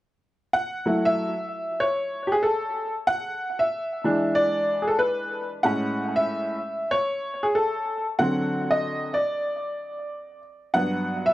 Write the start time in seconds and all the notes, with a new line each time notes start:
0.53 F#5
0.86 F#3 A3 E4
1.05 E5
1.80 C#5
2.27 G4
2.32 G#4
2.43 A4
3.07 F#5
3.59 E5
4.04 E3 G#3 D4
4.35 D5
4.82 G#4
4.88 A4
4.99 B4
5.63 A2 G#3 C#4 F#5
6.16 E5
6.91 C#5
7.43 G#4
7.55 A4
8.19 D3 F#3 C4 F#5
8.71 D#5
9.14 D5
10.74 G2 F#3 B3 F#5
11.26 E5